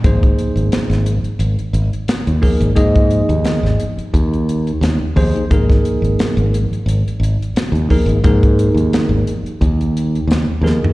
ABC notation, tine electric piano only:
X:1
M:4/4
L:1/8
Q:"Swing 16ths" 1/4=88
K:Ab
V:1 name="Tine electric piano"
[F,B,EAc]3 z4 [F,B,EAB] | [F,B,EAe]3 z4 [F,B,EAc] | [F,B,EAB]3 z4 [F,B,EAB] | [F,B,EAB]3 z4 [F,B,EAB] |]